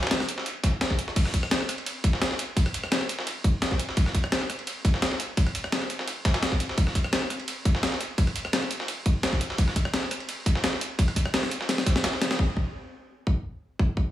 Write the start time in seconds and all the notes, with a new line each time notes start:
0.03 cross-stick, snare, ride
0.07 snare, ride
0.11 snare, closed hi-hat, ride
0.20 cross-stick, snare, ride
0.28 closed hi-hat, ride
0.38 snare
0.46 closed hi-hat, ride
0.64 kick, snare, closed hi-hat, ride
0.81 snare, closed hi-hat, ride
0.90 kick, snare
0.99 closed hi-hat, ride
1.08 snare
1.16 kick, closed hi-hat, crash, ride
1.25 cross-stick, snare
1.34 kick, closed hi-hat, ride
1.43 cross-stick
1.51 snare, closed hi-hat, ride
1.61 cross-stick
1.69 cross-stick, closed hi-hat, ride
1.78 ride
1.86 closed hi-hat, ride
2.04 kick, closed hi-hat, ride
2.13 snare
2.22 snare, closed hi-hat, ride
2.31 snare
2.39 closed hi-hat, ride
2.57 kick, closed hi-hat, ride
2.66 cross-stick, ride
2.74 closed hi-hat, ride
2.84 cross-stick
2.92 snare, closed hi-hat, ride
3.01 cross-stick, ride
3.09 closed hi-hat, ride
3.19 snare
3.27 closed hi-hat, ride
3.44 kick, closed hi-hat
3.62 snare, closed hi-hat, ride
3.71 kick, snare
3.79 closed hi-hat, ride
3.89 snare
3.97 kick, closed hi-hat, ride
4.06 cross-stick, snare
4.15 kick, closed hi-hat, ride
4.24 cross-stick
4.32 snare, closed hi-hat, ride
4.41 cross-stick
4.50 cross-stick, closed hi-hat, ride
4.59 ride
4.67 closed hi-hat, ride
4.85 kick, closed hi-hat, ride
4.94 snare
5.02 snare, closed hi-hat, ride
5.11 snare
5.20 closed hi-hat, ride
5.37 kick, closed hi-hat, ride
5.47 cross-stick, ride
5.55 closed hi-hat, ride
5.64 cross-stick
5.72 snare, closed hi-hat, ride
5.82 cross-stick, ride
5.90 closed hi-hat, ride
5.99 snare
6.07 closed hi-hat, ride
6.25 kick, snare, closed hi-hat, ride
6.34 snare, ride
6.43 snare, closed hi-hat, ride
6.52 kick, snare
6.60 closed hi-hat, ride
6.69 snare
6.78 kick, closed hi-hat, ride
6.87 cross-stick, snare
6.95 kick, closed hi-hat, ride
7.04 cross-stick
7.13 snare, closed hi-hat, ride
7.22 cross-stick
7.30 cross-stick, closed hi-hat, ride
7.40 ride
7.48 closed hi-hat, ride
7.65 kick, closed hi-hat, ride
7.75 snare
7.83 snare, closed hi-hat, ride
7.92 snare
8.01 closed hi-hat, ride
8.18 kick, closed hi-hat, ride
8.27 cross-stick, ride
8.36 closed hi-hat, ride
8.45 cross-stick
8.53 snare, closed hi-hat, ride
8.62 cross-stick, ride
8.71 closed hi-hat, ride
8.80 snare
8.88 closed hi-hat, ride
9.06 kick, closed hi-hat
9.23 snare, closed hi-hat, ride
9.33 kick, snare
9.41 closed hi-hat, ride
9.50 snare
9.58 kick, closed hi-hat, ride
9.68 cross-stick, snare
9.76 kick, closed hi-hat, ride
9.85 cross-stick
9.94 snare, closed hi-hat, ride
10.03 cross-stick
10.11 cross-stick, closed hi-hat, ride
10.20 ride
10.29 closed hi-hat, ride
10.46 kick, closed hi-hat, ride
10.55 snare
10.64 snare, closed hi-hat, ride
10.73 snare
10.81 closed hi-hat, ride
10.99 kick, closed hi-hat, ride
11.08 cross-stick, ride
11.16 kick, closed hi-hat, ride
11.26 cross-stick
11.34 snare, closed hi-hat, ride
11.43 cross-stick, snare, ride
11.51 closed hi-hat, ride
11.61 snare
11.69 snare, closed hi-hat, ride
11.78 snare
11.86 kick, snare, closed hi-hat, ride
11.96 snare
12.04 snare, closed hi-hat, ride
12.13 snare
12.22 snare, closed hi-hat, ride
12.31 snare
12.39 kick
12.57 kick
13.27 kick
13.79 kick
13.97 kick